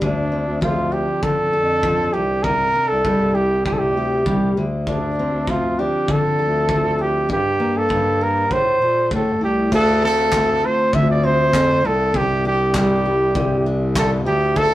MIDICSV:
0, 0, Header, 1, 5, 480
1, 0, Start_track
1, 0, Key_signature, -1, "minor"
1, 0, Tempo, 606061
1, 13, Time_signature, 4, 2, 24, 8
1, 11674, End_track
2, 0, Start_track
2, 0, Title_t, "Trumpet"
2, 0, Program_c, 0, 56
2, 20, Note_on_c, 0, 62, 70
2, 466, Note_off_c, 0, 62, 0
2, 497, Note_on_c, 0, 65, 72
2, 734, Note_on_c, 0, 67, 73
2, 746, Note_off_c, 0, 65, 0
2, 972, Note_on_c, 0, 69, 87
2, 984, Note_off_c, 0, 67, 0
2, 1687, Note_on_c, 0, 67, 81
2, 1699, Note_off_c, 0, 69, 0
2, 1927, Note_on_c, 0, 70, 97
2, 1939, Note_off_c, 0, 67, 0
2, 2280, Note_on_c, 0, 69, 83
2, 2292, Note_off_c, 0, 70, 0
2, 2649, Note_on_c, 0, 67, 75
2, 2661, Note_off_c, 0, 69, 0
2, 2890, Note_off_c, 0, 67, 0
2, 2895, Note_on_c, 0, 67, 69
2, 2956, Note_on_c, 0, 69, 67
2, 2967, Note_off_c, 0, 67, 0
2, 2999, Note_on_c, 0, 67, 76
2, 3011, Note_off_c, 0, 69, 0
2, 3614, Note_off_c, 0, 67, 0
2, 3869, Note_on_c, 0, 62, 77
2, 4351, Note_on_c, 0, 65, 72
2, 4363, Note_off_c, 0, 62, 0
2, 4590, Note_on_c, 0, 67, 74
2, 4602, Note_off_c, 0, 65, 0
2, 4838, Note_on_c, 0, 69, 88
2, 4850, Note_off_c, 0, 67, 0
2, 5553, Note_on_c, 0, 67, 79
2, 5565, Note_off_c, 0, 69, 0
2, 5786, Note_off_c, 0, 67, 0
2, 5796, Note_on_c, 0, 67, 89
2, 6156, Note_on_c, 0, 69, 84
2, 6168, Note_off_c, 0, 67, 0
2, 6517, Note_on_c, 0, 70, 83
2, 6528, Note_off_c, 0, 69, 0
2, 6752, Note_on_c, 0, 72, 85
2, 6764, Note_off_c, 0, 70, 0
2, 7225, Note_off_c, 0, 72, 0
2, 7246, Note_on_c, 0, 69, 67
2, 7456, Note_off_c, 0, 69, 0
2, 7475, Note_on_c, 0, 67, 76
2, 7690, Note_off_c, 0, 67, 0
2, 7719, Note_on_c, 0, 69, 94
2, 7932, Note_off_c, 0, 69, 0
2, 7958, Note_on_c, 0, 69, 95
2, 8435, Note_on_c, 0, 72, 83
2, 8447, Note_off_c, 0, 69, 0
2, 8667, Note_on_c, 0, 76, 93
2, 8679, Note_off_c, 0, 72, 0
2, 8782, Note_off_c, 0, 76, 0
2, 8795, Note_on_c, 0, 74, 80
2, 8905, Note_on_c, 0, 72, 91
2, 8917, Note_off_c, 0, 74, 0
2, 9394, Note_on_c, 0, 69, 84
2, 9405, Note_off_c, 0, 72, 0
2, 9633, Note_on_c, 0, 67, 97
2, 9645, Note_off_c, 0, 69, 0
2, 9864, Note_off_c, 0, 67, 0
2, 9873, Note_on_c, 0, 67, 85
2, 10088, Note_off_c, 0, 67, 0
2, 10111, Note_on_c, 0, 67, 87
2, 10817, Note_off_c, 0, 67, 0
2, 11074, Note_on_c, 0, 69, 75
2, 11177, Note_off_c, 0, 69, 0
2, 11302, Note_on_c, 0, 67, 88
2, 11539, Note_on_c, 0, 69, 101
2, 11551, Note_off_c, 0, 67, 0
2, 11674, Note_off_c, 0, 69, 0
2, 11674, End_track
3, 0, Start_track
3, 0, Title_t, "Steel-string acoustic guitar"
3, 0, Program_c, 1, 25
3, 0, Note_on_c, 1, 62, 43
3, 9, Note_on_c, 1, 50, 69
3, 252, Note_on_c, 1, 60, 49
3, 276, Note_off_c, 1, 62, 0
3, 483, Note_on_c, 1, 53, 55
3, 728, Note_on_c, 1, 62, 53
3, 970, Note_off_c, 1, 50, 0
3, 973, Note_on_c, 1, 50, 66
3, 1214, Note_on_c, 1, 69, 57
3, 1448, Note_off_c, 1, 53, 0
3, 1458, Note_on_c, 1, 53, 55
3, 1689, Note_off_c, 1, 50, 0
3, 1692, Note_on_c, 1, 48, 59
3, 1744, Note_off_c, 1, 69, 0
3, 1745, Note_off_c, 1, 53, 0
3, 1929, Note_off_c, 1, 48, 0
3, 1939, Note_on_c, 1, 48, 66
3, 1963, Note_off_c, 1, 62, 0
3, 2179, Note_off_c, 1, 60, 0
3, 2182, Note_on_c, 1, 62, 49
3, 2416, Note_on_c, 1, 55, 57
3, 2651, Note_on_c, 1, 64, 47
3, 2891, Note_off_c, 1, 48, 0
3, 2901, Note_on_c, 1, 48, 68
3, 3146, Note_on_c, 1, 67, 53
3, 3370, Note_off_c, 1, 55, 0
3, 3379, Note_on_c, 1, 55, 59
3, 3618, Note_off_c, 1, 48, 0
3, 3621, Note_on_c, 1, 50, 61
3, 3663, Note_off_c, 1, 64, 0
3, 3667, Note_off_c, 1, 55, 0
3, 3671, Note_off_c, 1, 67, 0
3, 3865, Note_off_c, 1, 50, 0
3, 3868, Note_on_c, 1, 50, 64
3, 4109, Note_off_c, 1, 62, 0
3, 4113, Note_on_c, 1, 60, 52
3, 4346, Note_on_c, 1, 53, 60
3, 4585, Note_on_c, 1, 62, 56
3, 4816, Note_off_c, 1, 50, 0
3, 4819, Note_on_c, 1, 50, 69
3, 5060, Note_on_c, 1, 69, 59
3, 5288, Note_off_c, 1, 53, 0
3, 5298, Note_on_c, 1, 53, 59
3, 5524, Note_off_c, 1, 62, 0
3, 5533, Note_on_c, 1, 62, 48
3, 5772, Note_on_c, 1, 43, 67
3, 5824, Note_off_c, 1, 62, 0
3, 5826, Note_off_c, 1, 53, 0
3, 5827, Note_off_c, 1, 50, 0
3, 5828, Note_off_c, 1, 69, 0
3, 5834, Note_off_c, 1, 60, 0
3, 6017, Note_on_c, 1, 58, 50
3, 6247, Note_on_c, 1, 55, 56
3, 6503, Note_on_c, 1, 62, 53
3, 6735, Note_off_c, 1, 43, 0
3, 6781, Note_off_c, 1, 55, 0
3, 6785, Note_off_c, 1, 58, 0
3, 6789, Note_off_c, 1, 62, 0
3, 6984, Note_on_c, 1, 69, 53
3, 7220, Note_on_c, 1, 57, 56
3, 7453, Note_on_c, 1, 64, 48
3, 7701, Note_on_c, 1, 50, 77
3, 7703, Note_off_c, 1, 69, 0
3, 7706, Note_on_c, 1, 69, 65
3, 7743, Note_off_c, 1, 64, 0
3, 7947, Note_on_c, 1, 60, 58
3, 8173, Note_off_c, 1, 57, 0
3, 8177, Note_on_c, 1, 57, 66
3, 8420, Note_on_c, 1, 65, 53
3, 8657, Note_off_c, 1, 50, 0
3, 8660, Note_on_c, 1, 50, 74
3, 8894, Note_off_c, 1, 60, 0
3, 8897, Note_on_c, 1, 60, 55
3, 9128, Note_off_c, 1, 57, 0
3, 9138, Note_on_c, 1, 57, 66
3, 9381, Note_off_c, 1, 50, 0
3, 9385, Note_on_c, 1, 48, 64
3, 9425, Note_off_c, 1, 57, 0
3, 9425, Note_off_c, 1, 65, 0
3, 9428, Note_off_c, 1, 69, 0
3, 9608, Note_off_c, 1, 48, 0
3, 9616, Note_on_c, 1, 48, 72
3, 9623, Note_on_c, 1, 67, 51
3, 9858, Note_off_c, 1, 60, 0
3, 9861, Note_on_c, 1, 62, 58
3, 10097, Note_on_c, 1, 55, 62
3, 10340, Note_on_c, 1, 64, 57
3, 10565, Note_off_c, 1, 48, 0
3, 10574, Note_on_c, 1, 48, 72
3, 10818, Note_off_c, 1, 62, 0
3, 10821, Note_on_c, 1, 62, 55
3, 11049, Note_off_c, 1, 55, 0
3, 11058, Note_on_c, 1, 55, 61
3, 11293, Note_off_c, 1, 48, 0
3, 11296, Note_on_c, 1, 50, 71
3, 11344, Note_off_c, 1, 55, 0
3, 11344, Note_off_c, 1, 64, 0
3, 11344, Note_off_c, 1, 67, 0
3, 11526, Note_off_c, 1, 50, 0
3, 11529, Note_on_c, 1, 50, 74
3, 11535, Note_on_c, 1, 69, 66
3, 11674, Note_off_c, 1, 50, 0
3, 11674, Note_off_c, 1, 62, 0
3, 11674, Note_off_c, 1, 69, 0
3, 11674, End_track
4, 0, Start_track
4, 0, Title_t, "Bass clarinet"
4, 0, Program_c, 2, 71
4, 12, Note_on_c, 2, 38, 85
4, 345, Note_off_c, 2, 38, 0
4, 372, Note_on_c, 2, 38, 85
4, 484, Note_off_c, 2, 38, 0
4, 491, Note_on_c, 2, 38, 85
4, 860, Note_off_c, 2, 38, 0
4, 1215, Note_on_c, 2, 41, 75
4, 1664, Note_off_c, 2, 41, 0
4, 1690, Note_on_c, 2, 36, 80
4, 2142, Note_off_c, 2, 36, 0
4, 2299, Note_on_c, 2, 36, 79
4, 2409, Note_off_c, 2, 36, 0
4, 2413, Note_on_c, 2, 36, 80
4, 3129, Note_on_c, 2, 38, 78
4, 3141, Note_off_c, 2, 36, 0
4, 3354, Note_off_c, 2, 38, 0
4, 3373, Note_on_c, 2, 36, 77
4, 3596, Note_off_c, 2, 36, 0
4, 3608, Note_on_c, 2, 38, 79
4, 4182, Note_off_c, 2, 38, 0
4, 4214, Note_on_c, 2, 38, 73
4, 4327, Note_off_c, 2, 38, 0
4, 4337, Note_on_c, 2, 38, 82
4, 4705, Note_off_c, 2, 38, 0
4, 5061, Note_on_c, 2, 38, 83
4, 5748, Note_off_c, 2, 38, 0
4, 5780, Note_on_c, 2, 43, 83
4, 6110, Note_off_c, 2, 43, 0
4, 6135, Note_on_c, 2, 43, 76
4, 6247, Note_off_c, 2, 43, 0
4, 6258, Note_on_c, 2, 43, 89
4, 6737, Note_on_c, 2, 45, 89
4, 6749, Note_off_c, 2, 43, 0
4, 6959, Note_off_c, 2, 45, 0
4, 6975, Note_on_c, 2, 46, 77
4, 7198, Note_off_c, 2, 46, 0
4, 7217, Note_on_c, 2, 45, 79
4, 7457, Note_on_c, 2, 36, 74
4, 7469, Note_off_c, 2, 45, 0
4, 7678, Note_off_c, 2, 36, 0
4, 7699, Note_on_c, 2, 38, 104
4, 8146, Note_off_c, 2, 38, 0
4, 8177, Note_on_c, 2, 38, 90
4, 8422, Note_off_c, 2, 38, 0
4, 8659, Note_on_c, 2, 38, 96
4, 9106, Note_off_c, 2, 38, 0
4, 9133, Note_on_c, 2, 41, 92
4, 9355, Note_off_c, 2, 41, 0
4, 9372, Note_on_c, 2, 36, 89
4, 9594, Note_off_c, 2, 36, 0
4, 9616, Note_on_c, 2, 36, 92
4, 10543, Note_off_c, 2, 36, 0
4, 10573, Note_on_c, 2, 36, 98
4, 11290, Note_on_c, 2, 38, 89
4, 11302, Note_off_c, 2, 36, 0
4, 11674, Note_off_c, 2, 38, 0
4, 11674, End_track
5, 0, Start_track
5, 0, Title_t, "Drums"
5, 15, Note_on_c, 9, 36, 78
5, 94, Note_off_c, 9, 36, 0
5, 493, Note_on_c, 9, 36, 94
5, 572, Note_off_c, 9, 36, 0
5, 972, Note_on_c, 9, 36, 96
5, 1051, Note_off_c, 9, 36, 0
5, 1451, Note_on_c, 9, 36, 102
5, 1530, Note_off_c, 9, 36, 0
5, 1933, Note_on_c, 9, 36, 83
5, 2012, Note_off_c, 9, 36, 0
5, 2413, Note_on_c, 9, 36, 94
5, 2492, Note_off_c, 9, 36, 0
5, 2896, Note_on_c, 9, 36, 101
5, 2975, Note_off_c, 9, 36, 0
5, 3374, Note_on_c, 9, 36, 97
5, 3453, Note_off_c, 9, 36, 0
5, 3857, Note_on_c, 9, 36, 79
5, 3936, Note_off_c, 9, 36, 0
5, 4336, Note_on_c, 9, 36, 93
5, 4415, Note_off_c, 9, 36, 0
5, 4818, Note_on_c, 9, 36, 102
5, 4898, Note_off_c, 9, 36, 0
5, 5297, Note_on_c, 9, 36, 98
5, 5376, Note_off_c, 9, 36, 0
5, 5780, Note_on_c, 9, 36, 84
5, 5859, Note_off_c, 9, 36, 0
5, 6258, Note_on_c, 9, 36, 90
5, 6338, Note_off_c, 9, 36, 0
5, 6739, Note_on_c, 9, 36, 92
5, 6818, Note_off_c, 9, 36, 0
5, 7217, Note_on_c, 9, 36, 100
5, 7296, Note_off_c, 9, 36, 0
5, 7698, Note_on_c, 9, 36, 88
5, 7698, Note_on_c, 9, 49, 88
5, 7777, Note_off_c, 9, 36, 0
5, 7777, Note_off_c, 9, 49, 0
5, 8175, Note_on_c, 9, 39, 96
5, 8176, Note_on_c, 9, 36, 105
5, 8255, Note_off_c, 9, 36, 0
5, 8255, Note_off_c, 9, 39, 0
5, 8658, Note_on_c, 9, 36, 111
5, 8738, Note_off_c, 9, 36, 0
5, 9135, Note_on_c, 9, 36, 105
5, 9140, Note_on_c, 9, 39, 101
5, 9214, Note_off_c, 9, 36, 0
5, 9219, Note_off_c, 9, 39, 0
5, 9617, Note_on_c, 9, 36, 92
5, 9696, Note_off_c, 9, 36, 0
5, 10094, Note_on_c, 9, 36, 100
5, 10094, Note_on_c, 9, 39, 99
5, 10173, Note_off_c, 9, 36, 0
5, 10173, Note_off_c, 9, 39, 0
5, 10575, Note_on_c, 9, 36, 109
5, 10654, Note_off_c, 9, 36, 0
5, 11052, Note_on_c, 9, 36, 117
5, 11058, Note_on_c, 9, 39, 111
5, 11132, Note_off_c, 9, 36, 0
5, 11137, Note_off_c, 9, 39, 0
5, 11534, Note_on_c, 9, 36, 92
5, 11614, Note_off_c, 9, 36, 0
5, 11674, End_track
0, 0, End_of_file